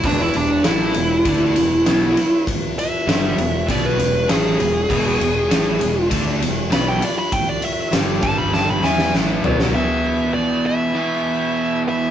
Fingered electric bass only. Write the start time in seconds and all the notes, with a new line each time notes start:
0.04 E1
0.35 E1
0.65 A1
0.96 E1
1.25 D2
1.56 E1
1.87 B1
3.07 G1
3.38 E1
3.69 B1
3.99 E1
4.30 A1
4.60 E1
4.90 E1
5.20 E1
5.51 A1
5.81 E1
6.11 D2
6.41 E1
6.72 B1
7.93 G1
8.23 G1
8.83 E2
9.13 A1
9.44 B1